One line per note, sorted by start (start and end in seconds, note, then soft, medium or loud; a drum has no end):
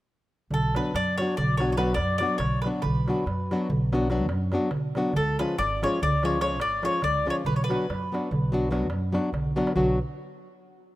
0.50 0.77 B1 medium
0.50 0.75 A4 medium
0.50 darbuka dum medium
0.75 0.91 F#3 medium
0.75 0.91 B3 soft
0.75 0.92 D4 soft
0.75 0.92 F#4 medium
0.75 0.95 B4 medium
0.75 darbuka tek medium
0.85 darbuka tek soft
0.94 1.20 F#2 medium
0.94 1.17 D5 loud
0.94 darbuka tek medium
1.06 darbuka tek soft
1.18 1.34 F#3 medium
1.18 1.35 B3 medium
1.18 1.35 D4 soft
1.18 1.37 C#5 medium
1.18 darbuka tek medium
1.22 1.36 F#4 medium
1.29 darbuka tek soft
1.37 1.98 B1 medium
1.37 1.57 D5 medium
1.37 darbuka dum medium
1.57 1.75 F#3 medium
1.57 1.75 B3 medium
1.57 1.75 D4 soft
1.57 1.75 F#4 medium
1.57 1.71 C#5 medium
1.57 darbuka tek medium
1.70 1.77 C#5 medium
1.70 darbuka tek soft
1.77 1.93 F#3 medium
1.77 1.93 B3 medium
1.77 1.93 D4 soft
1.77 1.94 F#4 medium
1.77 1.94 B4 medium
1.77 darbuka tek medium
1.87 darbuka tek soft
1.94 2.23 F#2 medium
1.94 2.17 D5 medium
1.94 darbuka tek medium
2.18 2.36 F#3 medium
2.18 2.37 B3 medium
2.18 2.37 D5 medium
2.18 darbuka tek soft
2.22 2.37 D4 medium
2.22 2.37 F#4 medium
2.38 2.65 B1 medium
2.38 2.61 C#5 medium
2.38 darbuka tek medium
2.38 darbuka dum medium
2.52 darbuka tek soft
2.62 2.81 F#3 medium
2.62 2.67 B4 medium
2.62 darbuka tek medium
2.66 2.81 B3 medium
2.66 2.81 D4 medium
2.66 2.81 F#4 medium
2.74 darbuka tek soft
2.82 3.10 B1 medium
2.82 4.06 B4 medium
2.82 darbuka dum medium
3.08 3.23 F#3 medium
3.08 3.24 B3 soft
3.08 3.24 D4 soft
3.08 3.24 F#4 medium
3.08 darbuka tek medium
3.18 darbuka tek soft
3.26 3.52 F#2 medium
3.26 darbuka tek medium
3.40 darbuka tek soft
3.51 3.67 F#3 medium
3.51 3.67 B3 medium
3.51 3.67 D4 medium
3.51 3.68 F#4 medium
3.51 darbuka tek medium
3.61 darbuka tek soft
3.70 4.29 B1 medium
3.70 darbuka dum medium
3.93 4.07 F#3 medium
3.93 4.07 B3 medium
3.93 4.08 D4 medium
3.93 4.08 F#4 medium
3.93 darbuka tek medium
4.02 darbuka tek soft
4.10 4.25 F#3 medium
4.10 4.26 B3 medium
4.10 4.26 D4 medium
4.10 4.26 F#4 medium
4.10 darbuka tek medium
4.20 darbuka tek soft
4.29 4.55 F#2 medium
4.29 darbuka tek medium
4.42 darbuka tek soft
4.52 4.69 F#3 medium
4.52 4.69 B3 medium
4.52 4.69 D4 medium
4.52 4.69 F#4 medium
4.52 darbuka tek medium
4.71 4.98 B1 medium
4.71 darbuka tek medium
4.71 darbuka dum medium
4.95 5.12 F#3 medium
4.95 5.12 B3 medium
4.95 5.12 D4 medium
4.95 5.13 F#4 medium
4.95 darbuka tek medium
5.05 darbuka tek soft
5.13 5.42 C#2 medium
5.13 5.38 A4 medium
5.13 darbuka dum medium
5.39 5.55 F3 soft
5.39 5.55 G#3 soft
5.39 5.55 C#4 soft
5.39 5.56 F4 medium
5.39 5.58 B4 medium
5.39 darbuka tek medium
5.48 darbuka tek soft
5.58 5.84 G#1 medium
5.58 5.83 D5 loud
5.58 darbuka tek medium
5.82 5.98 F3 medium
5.82 5.98 G#3 medium
5.82 5.99 C#4 medium
5.82 5.99 F4 medium
5.82 6.01 C#5 medium
5.82 darbuka tek medium
5.93 darbuka tek soft
6.02 6.60 C#2 medium
6.02 6.25 D5 medium
6.02 darbuka dum medium
6.23 6.38 F3 medium
6.23 6.39 G#3 medium
6.23 6.39 C#4 medium
6.23 6.39 F4 medium
6.23 6.40 C#5 medium
6.23 darbuka tek medium
6.33 darbuka tek soft
6.41 6.56 F3 medium
6.41 6.57 G#3 medium
6.41 6.57 C#4 soft
6.41 6.57 F4 medium
6.41 6.60 C#5 medium
6.41 darbuka tek medium
6.51 darbuka tek soft
6.60 6.86 G#1 medium
6.60 6.83 D5 medium
6.60 darbuka tek medium
6.73 darbuka tek soft
6.82 6.99 F3 medium
6.82 6.99 G#3 medium
6.82 7.00 C#4 medium
6.82 7.00 F4 medium
6.82 7.02 C#5 medium
6.82 darbuka tek medium
7.02 7.29 C#2 medium
7.02 7.26 D5 medium
7.02 darbuka tek medium
7.02 darbuka dum medium
7.15 darbuka tek soft
7.26 7.42 F3 medium
7.26 7.42 G#3 medium
7.26 7.42 C#4 medium
7.26 7.43 F4 medium
7.26 darbuka tek soft
7.30 7.35 C#5 medium
7.45 7.72 B1 medium
7.45 7.53 B4 medium
7.45 darbuka dum medium
7.56 7.63 C#5 medium
7.64 9.30 B4 medium
7.69 7.85 F#3 medium
7.69 7.85 B3 soft
7.69 7.85 D4 soft
7.69 7.86 F#4 medium
7.69 darbuka tek medium
7.81 darbuka tek soft
7.90 8.15 F#2 medium
7.90 darbuka tek medium
8.02 darbuka tek soft
8.12 8.28 F#3 medium
8.12 8.28 B3 medium
8.12 8.29 D4 soft
8.12 8.29 F#4 medium
8.12 darbuka tek medium
8.23 darbuka tek soft
8.31 8.90 B1 medium
8.31 darbuka dum medium
8.44 darbuka tek soft
8.52 8.68 F#3 medium
8.52 8.68 B3 medium
8.52 8.68 D4 medium
8.52 8.69 F#4 medium
8.63 darbuka tek soft
8.71 8.86 F#3 medium
8.71 8.86 B3 medium
8.71 8.87 D4 medium
8.71 8.87 F#4 medium
8.71 darbuka tek medium
8.82 darbuka tek soft
8.90 9.16 F#2 medium
8.90 darbuka tek medium
9.03 darbuka tek soft
9.13 9.29 F#3 medium
9.13 9.29 B3 medium
9.13 9.29 D4 medium
9.13 9.30 F#4 medium
9.13 darbuka tek medium
9.24 darbuka tek soft
9.33 9.58 B1 medium
9.33 darbuka tek medium
9.33 darbuka dum medium
9.45 darbuka dum soft
9.56 9.72 F#3 medium
9.56 9.72 B3 medium
9.56 9.72 D4 medium
9.56 9.72 F#4 medium
9.56 darbuka tek medium
9.67 darbuka tek medium
9.76 9.98 B1 medium
9.76 9.98 F#3 medium
9.76 9.98 B3 soft
9.76 9.98 D4 medium
9.76 9.98 F#4 medium
9.76 darbuka dum medium